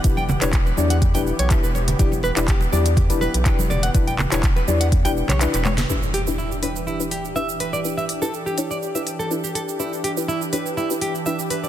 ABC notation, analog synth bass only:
X:1
M:4/4
L:1/16
Q:"Swing 16ths" 1/4=123
K:Edor
V:1 name="Analog synth bass" clef=bass
E,,,3 E,,,3 E,,3 E,,, z B,,, z E,,,3 | E,,,3 E,,,3 E,,3 E,,, z B,,, z E,,,3 | E,,,3 E,,,3 E,,3 E,,, z B,,, z E,,,3 | z16 |
z16 | z16 |]